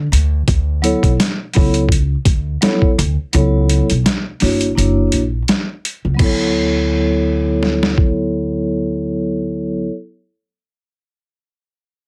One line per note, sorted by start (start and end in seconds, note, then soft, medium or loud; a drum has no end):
0.12 0.41 D2 medium
0.12 closed hi-hat medium
0.48 0.93 D2 medium
0.48 kick loud
0.48 closed hi-hat medium
0.82 1.09 F#3 medium
0.82 1.10 B3 medium
0.82 1.10 E4 medium
0.82 1.10 A4 medium
0.82 1.11 C#5 medium
0.82 closed hi-hat medium
1.03 1.16 B1 medium
1.03 kick medium
1.03 closed hi-hat soft
1.20 snare loud
1.20 closed hi-hat medium
1.54 2.13 C#2 medium
1.54 1.81 F#3 medium
1.54 1.81 B3 medium
1.54 1.81 E4 medium
1.54 1.82 A4 medium
1.54 1.82 C#5 medium
1.54 kick medium
1.54 open hi-hat soft
1.74 closed hi-hat soft
1.89 kick medium
1.89 closed hi-hat medium
2.25 2.55 D2 medium
2.25 kick medium
2.25 closed hi-hat medium
2.61 2.88 F#3 medium
2.61 2.88 B3 medium
2.61 2.89 E4 medium
2.61 2.89 A4 medium
2.61 2.89 C#5 medium
2.61 snare loud
2.61 closed hi-hat medium
2.82 kick medium
2.98 3.15 D2 medium
2.98 closed hi-hat medium
3.33 3.79 C#2 loud
3.33 3.85 F#3 medium
3.33 3.85 B3 medium
3.33 3.86 E4 medium
3.33 3.86 A4 medium
3.33 3.86 C#5 medium
3.33 closed hi-hat medium
3.69 closed hi-hat medium
3.90 4.03 B1 medium
3.90 closed hi-hat soft
4.06 snare loud
4.06 closed hi-hat medium
4.40 4.70 G1 medium
4.40 4.67 A#3 medium
4.40 4.67 D4 medium
4.40 4.68 E4 medium
4.40 4.68 F#4 medium
4.40 4.68 C#5 medium
4.40 snare soft
4.40 open hi-hat soft
4.61 closed hi-hat soft
4.75 5.06 F#1 medium
4.75 5.20 A#3 medium
4.75 5.20 D4 medium
4.75 5.20 E4 medium
4.75 5.21 F#4 medium
4.75 5.21 C#5 medium
4.75 closed hi-hat medium
5.12 5.41 A#1 medium
5.12 closed hi-hat medium
5.48 snare medium
5.48 closed hi-hat medium
5.85 closed hi-hat medium
6.05 6.17 C#2 medium
6.14 9.83 F#3 medium
6.14 9.85 B3 medium
6.19 9.88 D2 medium
6.19 9.87 E4 medium
6.19 9.90 A4 medium
6.19 kick medium
6.19 crash medium
6.24 9.92 C#5 medium
7.63 snare soft
7.83 snare medium
7.98 kick medium